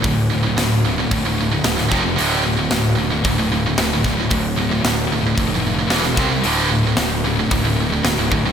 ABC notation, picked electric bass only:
X:1
M:4/4
L:1/8
Q:1/4=112
K:Dm
V:1 name="Picked electric bass" clef=bass
D,,,2 D,,,2 D,,,2 D,,, F,,, | D,,,2 D,,,2 D,,,2 D,,, D,,, | D,,,2 D,,,2 F,,,2 E,,, C,, | D,,,2 D,,,2 D,,,2 D,,, D,,, |]